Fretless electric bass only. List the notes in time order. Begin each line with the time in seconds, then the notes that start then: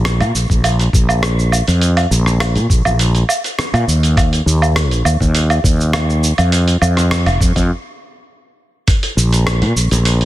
Already playing: A#1
0.21 A#2
0.35 A#1
0.50 A#1
0.93 A#1
1.68 F2
2.11 A#1
2.56 A#2
2.70 A#1
2.85 A#1
3.74 A#2
3.87 D#2
4.46 D#2
4.91 A#1
5.05 D#2
5.21 D#2
5.64 D#2
6.38 F2
6.82 F2
7.26 F1
7.41 F2
7.56 F2
9.17 A#1
9.62 A#2
9.76 A#1
9.91 A#1